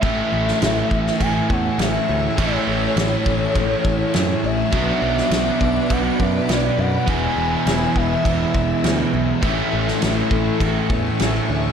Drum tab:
CC |x---x---x---x---|x---x---x---x---|x---x---x---x---|x---x---x---x---|
SD |---oo--o----o---|----o-------o---|---oo-------o---|----o-------o---|
BD |o-----o-o-o-----|o-----o-o-o-----|o-----o-o-o-----|o-----o-o-o-----|

CC |x---x---x---x---|
SD |---oo-------o---|
BD |o-----o-o-o-----|